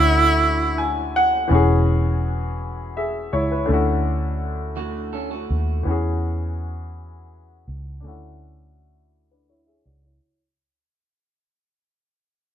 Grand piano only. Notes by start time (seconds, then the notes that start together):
Already playing: D3 A3 C#4 E4 F#4
0.78 G#5
1.16 F#5
1.48 E3 B3 C#4
1.53 F#4 G#4
2.97 G#4 E5
3.33 E4 C#5
3.52 B4
3.66 D3 A3
3.70 C#4 E4 F#4
5.83 E3 B3 C#4
5.89 F#4 G#4
8.00 A3 C#4 D4
8.07 E4 F#4
9.31 D4 B4
9.49 E4 C#5
9.67 G#4 E5
9.85 F#4 D5
10.03 E4 C#5